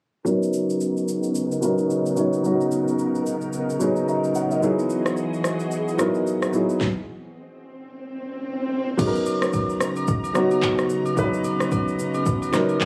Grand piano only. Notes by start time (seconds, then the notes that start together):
0.25 F#3 B3 C#4 D#4 A#4
1.61 F#3 B3 C#4 D#4 A#4
2.16 F#3 B3 C#4 D#4 C#5
2.43 F#3 B3 C#4 D#4 F#4
3.79 F#3 B3 C#4 D#4 G#4
4.08 D#5 A#5
4.35 C#5 F#5
4.51 A#4 D#5
4.61 F#3 B3 D#4 E4 G#4
5.97 F#3 B3 D#4 E4 A#4
6.52 F#3 B3 D#4 E4 G#4
8.97 F#3 B3 C#4 D#4 G#4
9.07 A#4
10.34 F#3 B3 C#4 D#4 F#4
11.15 F#3 B3 C#4 D#4 B4
12.52 F#3 B3 C#4 D#4 A#4
12.81 G#4 C#5